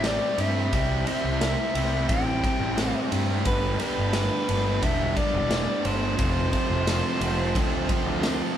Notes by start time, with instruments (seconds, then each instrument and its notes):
Already playing: picked electric bass A1
0.04 overdriven electric guitar C3 G3 C4 E4, soprano saxophone D5, snare, ride
0.38 picked electric bass G2, overdriven electric guitar C3 G3 C4 E4, soprano saxophone E5, ride
0.72 picked electric bass C2, overdriven electric guitar C3 G3 C4 E4, kick, ride
1.07 overdriven electric guitar C3 G3 C4 E4, soprano saxophone E5, ride
1.24 picked electric bass C2
1.41 overdriven electric guitar C3 G3 C4 E4, snare, ride
1.75 picked electric bass C2, overdriven electric guitar C3 G3 C4 E4, ride
2.09 picked electric bass A1, overdriven electric guitar C3 G3 C4 E4, soprano saxophone G5, kick, ride
2.43 overdriven electric guitar C3 G3 C4 E4, kick, ride
2.60 picked electric bass A1
2.77 overdriven electric guitar C3 G3 C4 E4, snare, ride
3.11 picked electric bass G2, overdriven electric guitar C3 G3 C4 E4, ride
3.45 picked electric bass G1, overdriven electric guitar G2 D3 G3 B3 D4, tonewheel organ D4 G4 D5 B5, soprano saxophone B4, kick, ride
3.79 overdriven electric guitar G2 D3 G3 B3 D4, soprano saxophone B4, ride
3.98 picked electric bass G1
4.13 overdriven electric guitar G2 D3 G3 B3 D4, snare, ride
4.48 picked electric bass G1, overdriven electric guitar G2 D3 G3 B3 D4, ride
4.82 picked electric bass E1, overdriven electric guitar G2 D3 G3 B3 D4, soprano saxophone E5, kick, ride
5.17 overdriven electric guitar G2 D3 G3 B3 D4, soprano saxophone D5, kick, ride
5.34 picked electric bass E1
5.51 overdriven electric guitar G2 D3 G3 B3 D4, snare, ride
5.85 picked electric bass G1, overdriven electric guitar G2 D3 G3 B3 D4, soprano saxophone C5, ride
6.18 picked electric bass F1, overdriven electric guitar F2 C3 F3 A3 C4, tonewheel organ C4 F4 A4 C5, kick, ride
6.53 overdriven electric guitar F2 C3 F3 A3 C4, kick, ride
6.70 picked electric bass F1
6.87 overdriven electric guitar F2 C3 F3 A3 C4, snare, ride
7.20 picked electric bass F1, overdriven electric guitar F2 C3 F3 A3 C4, ride
7.55 picked electric bass D2, overdriven electric guitar F2 C3 F3 A3 C4, kick, ride
7.89 overdriven electric guitar F2 C3 F3 A3 C4, kick, ride
8.06 picked electric bass D2
8.23 overdriven electric guitar F2 C3 F3 A3 C4, snare, ride